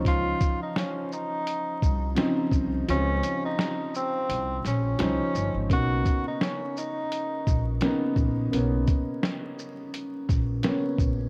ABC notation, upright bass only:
X:1
M:4/4
L:1/16
Q:"Swing 16ths" 1/4=85
K:C#dor
V:1 name="Upright bass" clef=bass
C,,2 z8 ^B,,,2 z2 B,,,2 | C,,2 z6 ^B,,,2 A,,,2 B,,, z =G,,, ^G,,, | B,,,2 z8 A,,,2 z2 A,,,2 | B,,,2 z8 A,,,2 z2 A,,,2 |]